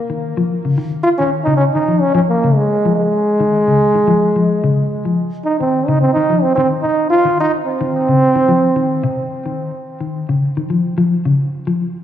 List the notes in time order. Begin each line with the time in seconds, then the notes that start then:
Already playing: A#3
0.10 D#3
0.37 F3
0.65 C#3
0.78 D#3
1.03 F4
1.18 D#3 C#4
1.44 C#3 D#4
1.57 C#4
1.73 D#3 D#4
1.88 F3
2.01 C#4
2.15 F3 C#4
2.29 A#3
2.44 C#3
2.56 G#3
2.85 F3
2.96 G#3
3.40 D#3
3.67 C#3
3.95 D#3
4.07 F3
4.36 F3
4.64 C#3
5.05 F3
5.45 D#4
5.60 D#3 C4
5.87 C#3 D#4
6.01 C4
6.13 D#3 D#4
6.30 F3
6.42 C4
6.55 D#3 C4
6.82 D#4, muted clean electric guitar stroke
7.10 F4
7.25 D#3
7.40 D#4
7.66 C4
7.81 D#3
8.09 C#3
8.36 D#3
8.48 F3
8.76 D#3
9.04 C3
9.46 D#3
10.01 D#3
10.29 C#3
10.57 D#3
10.70 F3
10.98 F3
11.25 C#3
11.67 F3